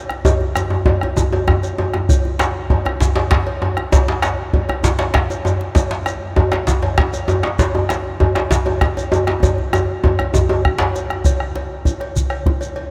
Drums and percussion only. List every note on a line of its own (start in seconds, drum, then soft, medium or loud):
0.09 bombo rim medium
0.09 djembe slap medium
0.25 bombo low medium
0.25 cowbell medium
0.25 djembe tone loud
0.25 djembe bass medium
0.25 shekere medium
0.41 djembe tone medium
0.55 bombo rim medium
0.55 cowbell soft
0.55 djembe slap medium
0.55 djembe tone medium
0.55 shekere soft
0.70 djembe tone medium
0.85 bombo low loud
0.85 cowbell soft
0.85 djembe tone loud
1.01 bombo rim medium
1.01 cowbell soft
1.01 djembe slap medium
1.01 djembe tone medium
1.17 djembe tone medium
1.17 djembe bass medium
1.17 shekere medium
1.32 cowbell medium
1.32 djembe tone medium
1.48 bombo rim medium
1.48 bombo low medium
1.48 djembe slap medium
1.48 djembe tone loud
1.63 cowbell soft
1.63 djembe tone medium
1.63 shekere soft
1.78 cowbell soft
1.78 djembe tone medium
1.93 bombo rim medium
1.93 djembe slap medium
1.93 djembe tone medium
2.09 bombo low loud
2.09 cowbell medium
2.09 djembe bass medium
2.09 shekere soft
2.25 djembe tone medium
2.39 bombo rim medium
2.39 cowbell soft
2.39 djembe slap loud
2.39 djembe slap medium
2.39 shekere soft
2.56 bombo rim soft
2.70 bombo rim soft
2.70 bombo low medium
2.70 cowbell soft
2.70 djembe slap soft
2.70 djembe tone medium
2.85 bombo rim medium
2.85 cowbell soft
2.85 djembe slap medium
2.85 djembe tone medium
3.00 bombo rim soft
3.00 djembe slap medium
3.00 djembe slap soft
3.00 djembe bass medium
3.00 shekere soft
3.16 cowbell soft
3.16 djembe slap medium
3.31 bombo rim medium
3.31 bombo low medium
3.31 djembe slap loud
3.31 djembe slap medium
3.46 cowbell medium
3.46 djembe tone medium
3.62 bombo rim soft
3.62 cowbell soft
3.62 djembe tone medium
3.77 bombo rim medium
3.77 djembe slap medium
3.92 bombo low loud
3.92 cowbell medium
3.92 djembe slap medium
3.92 djembe bass medium
3.92 shekere medium
4.08 djembe slap medium
4.08 djembe tone medium
4.22 bombo rim medium
4.22 cowbell medium
4.22 djembe slap medium
4.22 shekere soft
4.53 bombo low loud
4.53 cowbell soft
4.53 djembe tone medium
4.69 bombo rim medium
4.69 cowbell soft
4.69 djembe slap medium
4.69 djembe tone medium
4.84 djembe slap medium
4.84 djembe bass medium
4.84 shekere medium
4.99 cowbell soft
4.99 djembe slap medium
5.14 bombo rim loud
5.14 bombo low medium
5.14 djembe slap loud
5.14 djembe slap medium
5.30 cowbell soft
5.30 djembe tone medium
5.30 shekere soft
5.45 cowbell medium
5.45 djembe tone medium
5.45 shekere soft
5.61 djembe slap medium
5.75 bombo low loud
5.75 cowbell medium
5.75 djembe slap medium
5.75 djembe bass medium
5.75 shekere medium
5.91 djembe slap medium
5.91 djembe tone medium
6.06 bombo rim medium
6.06 cowbell soft
6.06 djembe slap medium
6.06 shekere soft
6.36 bombo low loud
6.36 cowbell medium
6.36 djembe tone loud
6.52 bombo rim medium
6.52 cowbell medium
6.52 djembe slap medium
6.52 djembe tone medium
6.67 djembe slap medium
6.67 djembe bass medium
6.67 shekere medium
6.82 cowbell medium
6.82 djembe tone medium
6.98 bombo rim loud
6.98 bombo low loud
6.98 djembe slap medium
7.13 cowbell soft
7.13 djembe tone medium
7.13 shekere soft
7.28 cowbell medium
7.28 djembe tone loud
7.28 shekere soft
7.43 bombo rim medium
7.43 djembe slap medium
7.59 bombo low loud
7.59 cowbell medium
7.59 djembe slap medium
7.59 djembe bass medium
7.59 shekere medium
7.75 djembe tone medium
7.89 bombo rim medium
7.89 cowbell medium
7.89 djembe slap medium
7.89 shekere soft
8.20 bombo low medium
8.20 cowbell soft
8.20 djembe tone loud
8.35 bombo rim medium
8.35 cowbell medium
8.35 djembe slap medium
8.35 djembe tone medium
8.51 djembe slap medium
8.51 djembe bass medium
8.51 shekere medium
8.66 cowbell medium
8.66 djembe tone medium
8.81 bombo rim medium
8.81 bombo low medium
8.81 djembe slap medium
8.97 cowbell medium
8.97 djembe tone medium
8.97 shekere soft
9.12 cowbell medium
9.12 djembe tone loud
9.12 shekere soft
9.27 bombo rim medium
9.27 djembe slap medium
9.43 bombo rim soft
9.43 bombo low loud
9.43 cowbell medium
9.43 djembe slap soft
9.43 djembe tone loud
9.43 djembe bass medium
9.43 shekere medium
9.58 djembe tone medium
9.73 bombo rim medium
9.73 cowbell soft
9.73 djembe slap medium
9.73 djembe tone loud
9.73 shekere soft
9.89 bombo rim soft
10.04 bombo rim soft
10.04 bombo low loud
10.04 cowbell medium
10.04 djembe tone loud
10.19 bombo rim medium
10.19 cowbell medium
10.19 djembe slap medium
10.19 djembe tone medium
10.34 djembe tone loud
10.34 djembe bass medium
10.34 shekere medium
10.49 cowbell medium
10.49 djembe slap soft
10.49 djembe tone loud
10.65 bombo rim medium
10.65 bombo low medium
10.65 djembe bass soft
10.78 cowbell medium
10.78 djembe slap loud
10.78 djembe bass soft
10.96 cowbell soft
10.96 djembe slap medium
10.96 shekere soft
11.10 bombo rim medium
11.10 djembe slap medium
11.24 bombo rim soft
11.24 bombo low medium
11.24 cowbell medium
11.24 djembe tone medium
11.24 djembe bass medium
11.24 shekere medium
11.40 bombo rim medium
11.40 djembe slap soft
11.55 cowbell soft
11.55 djembe slap medium
11.85 bombo low medium
11.85 cowbell soft
11.85 djembe tone medium
11.85 shekere soft
12.00 bombo rim soft
12.00 cowbell soft
12.00 djembe slap medium
12.16 djembe slap soft
12.16 djembe bass medium
12.16 shekere medium
12.30 bombo rim medium
12.30 cowbell medium
12.30 djembe slap soft
12.46 bombo low loud
12.46 djembe slap medium
12.46 djembe tone medium
12.61 cowbell soft
12.61 shekere soft
12.76 cowbell medium
12.76 djembe slap soft